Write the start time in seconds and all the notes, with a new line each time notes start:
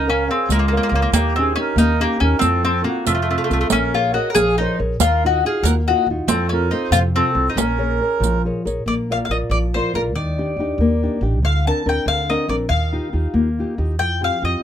Already playing: C#2 C#4
0.07 C#4 A#4 C#5 F5
0.12 A#4
0.27 C4 G#4 A#4 C#5 F5
0.49 C#2 G#3 A#3, riq
0.53 F4
0.59 A#3
0.68 A#3 A#4
0.73 C#5 F5
0.77 A#3
0.83 A#3
0.89 C#2 A#3 A#4
0.94 A#3 C#5 F5
1.02 A#3
1.12 D#2 D#3 A#3 G4, riq
1.36 C4 C#4 D#4 G4 G#4
1.56 C#4 D#4 G4
1.60 A#4
1.76 D#2 A#3 D#4 A#4, riq
1.99 A#3 C#4 D#4 G4
2.20 D#2 C#4 D#4 G4 A#4
2.39 F2 F3 C4 A4, riq
2.64 C4 F4 A4
2.84 A#3 C4 F4 F#4 A4
3.06 F2 C3 A3 F4, riq
3.15 A3
3.22 A3
3.29 A3 C4 F4 A4
3.38 A3
3.44 A3
3.50 C2 A3 C4 F4 A4, riq
3.61 A3
3.70 A#1 A#3 C#4 A#4, riq
3.94 F4 G#4 A#4 C#5
4.14 F#4 G#4 A#4 C#5 D#5
4.30 A#4 F#5
4.35 A#1 F3 G#4 F5, riq
4.58 D#4 G#4 A#4 C5 C#5
4.79 A#1 G#4 A#4 C#5
4.99 D#2 D#3 F4, riq
5.05 A#4
5.24 D#4 F4 F#4 D#5
5.45 D#4 F4 F#4 G#4 F5
5.63 D#2 A#3 A#4 F#5, riq
5.87 D#4 F4 F#4 D#5
6.07 D#2 D#4 F4 F#4
6.27 F2 F3 C4 A4, riq
6.49 C4 C#4 F4 A4 A#4
6.71 C4 D#4 F4 A4 C5
6.91 F2 C3 F4 C5, riq
7.15 C4 F4 A4
7.35 C2 C4 F4 A4
7.49 D#4 C5
7.55 A#1 A#3 C#4 A#4, riq
7.78 G#4 A#4 C#5
8.01 G#4 A#4 C#5
8.20 A#1 F3, riq
8.45 G#4 A#4 C#5
8.65 A#1 G#4 A#4 C#5, riq
8.86 A#1 A#3 D5
9.10 F4 A#4 D5 F5
9.25 F5
9.29 A#1 F4 A#4 D5 D#5
9.50 A#1 F3 D5
9.74 F4 A#4 C5 D5
9.94 A#1 F4 A#4 D5
10.13 D#2 D#3 D5
10.38 D4 D#4 G4
10.57 D#2 D4 D#4 G4
10.78 D#2 A#3
11.03 D4 D#4 G4
11.21 A1 D4 D#4 G4
11.41 D2 D3 F5
11.67 C4 D4 A#4 A5
11.86 D2 C4 D4 A#4 G5
12.06 D2 D3 F5
12.30 C4 D4 A#4 D#5
12.48 A#1 C4 D4 A#4 D5
12.68 D#2 D#3 F5
12.92 D#4 F4 G4
13.13 D#2 D#4 F4 G4
13.34 D#2 A#3
13.59 D#4 F4 G4
13.78 D#2 D#4 F4 G4
13.99 F2 F3 G5
14.21 C4 F4 G4 F5
14.42 F2 C4 F4 G4 D#5